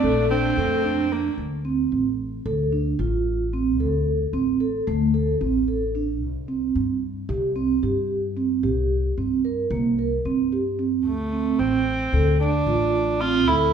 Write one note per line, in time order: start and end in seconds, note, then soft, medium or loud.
0.00 0.51 A#1 medium
0.00 1.35 A#2 medium
0.00 1.34 A3 medium
0.00 0.27 D4 loud
0.00 1.34 D4 medium
0.00 0.25 A4 medium
0.30 1.13 C4 medium
0.30 0.52 D4 medium
0.57 1.27 F2 medium
0.57 0.79 A4 medium
0.84 1.27 D4 medium
1.12 1.38 A#3 medium
1.38 1.85 D2 medium
1.65 2.08 C4 medium
1.92 2.39 A1 medium
2.46 2.92 D2 medium
2.46 2.67 A4 medium
2.72 2.94 D4 medium
2.99 3.80 A1 medium
2.99 3.42 F4 medium
3.53 3.75 C4 medium
3.80 4.27 D2 medium
3.80 4.23 A4 medium
4.33 4.80 A1 medium
4.33 4.55 C4 medium
4.60 4.82 A4 medium
4.87 5.34 D2 medium
4.87 5.08 A3 medium
5.14 5.35 A4 medium
5.41 6.22 A1 medium
5.41 5.62 C4 medium
5.68 5.89 A4 medium
5.95 6.16 D4 medium
6.22 6.69 C2 medium
6.48 6.91 C4 medium
6.75 7.22 G2 medium
7.29 7.76 C2 medium
7.29 7.50 G4 medium
7.56 7.77 C4 medium
7.83 8.65 G2 medium
7.83 8.25 G4 medium
8.37 8.58 C4 medium
8.63 9.10 C2 medium
8.63 9.06 G4 medium
9.17 9.64 G2 medium
9.17 9.39 C4 medium
9.45 9.66 A#4 medium
9.70 10.18 C2 medium
9.70 9.93 A#3 medium
9.99 10.20 A#4 medium
10.25 11.05 G2 medium
10.25 10.47 C4 medium
10.52 10.74 G4 medium
10.79 11.00 C4 medium
11.05 11.52 D2 medium
11.05 11.61 A3 medium
11.33 11.75 C4 medium
11.59 12.06 A1 medium
11.59 12.40 C4 medium
12.13 12.60 D2 medium
12.13 12.35 A4 medium
12.40 13.22 D4 medium
12.40 12.62 D4 medium
12.66 13.47 A1 medium
12.66 13.10 F4 medium
13.20 13.42 C4 medium
13.20 13.49 F4 loud
13.47 13.73 D2 medium
13.47 13.73 E4 medium
13.47 13.73 A4 medium